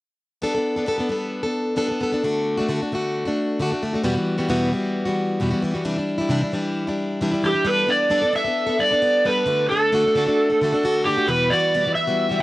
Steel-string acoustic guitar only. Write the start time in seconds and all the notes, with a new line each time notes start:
0.42 G3 B3 D4 A4
0.55 B3 D4 A4
0.76 B3 D4 A4
0.86 G3 B3 D4 A4
0.98 B3 D4 A4
1.09 G3 B3 D4 A4
1.43 B3 D4 A4
1.76 G3 B3 D4 A4
1.88 B3 D4 A4
2.00 G3 B3 D4 A4
2.12 B3 D4 A4
2.24 D3 A3 D4 F#4
2.57 A3 D4 F#4
2.69 D3 A3 D4 F#4
2.81 A3 D4 F#4
2.92 D3 A3 D4 F#4
3.25 A3 D4 F#4
3.60 D3 A3 D4 F#4
3.72 A3 D4 F#4
3.82 D3 A3 D4 F#4
3.93 A3 D4 F#4
4.03 E2 B2 E3 G3 B3 F#4
4.14 E3 G3 B3 F#4
4.38 E3 G3 B3 F#4
4.49 E2 B2 E3 G3 B3 F#4
4.71 E3 G3 B3 F#4
5.05 E3 G3 B3 F#4
5.40 E2 B2 E3 G3 B3 F#4
5.51 E3 G3 B3 F#4
5.62 E3 G3 B3 F#4
5.74 E3 G3 B3 F#4
5.84 C3 E3 G3 D4 E4
5.96 G3 D4 E4
6.18 G3 D4 E4
6.29 C3 E3 G3 D4 E4
6.41 G3 D4 E4
6.53 E3 G3 D4 E4
6.87 G3 D4 E4
7.21 C3 E3 G3 D4 E4
7.31 G3 D4 E4
7.43 E3 G3 D4 E4
7.52 G3 D4 E4
7.65 G3 B3 D4 A4
7.87 G3 B3 D4 A4
8.10 G3 B3 D4 A4
8.22 B3 D4 A4
8.33 G3 B3 D4 A4
8.45 B3 D4 A4
8.67 B3 D4 A4
8.79 G3 B3 D4 A4
8.91 B3 D4 A4
9.02 G3 B3 D4 A4
9.25 G3 B3 D4 A4
9.46 D3 A3 D4 F#4
9.69 D3 A3 D4 F#4
9.92 D3 A3 D4 F#4
10.04 A3 D4 F#4
10.15 D3 A3 D4 F#4
10.26 A3 D4 F#4
10.50 A3 D4 F#4
10.61 D3 A3 D4 F#4
10.72 A3 D4 F#4
10.83 D3 A3 D4 F#4
11.05 D3 A3 D4 F#4
11.17 A3 D4 F#4
11.27 E2 B2 E3 G3 B3 F#4
11.50 E3 G3 B3 F#4
11.74 E2 B2 E3 G3 B3 F#4
11.84 E3 G3 B3 F#4
11.96 E3 G3 B3 F#4
12.07 E3 G3 B3 F#4
12.29 E3 G3 B3 F#4
12.40 E3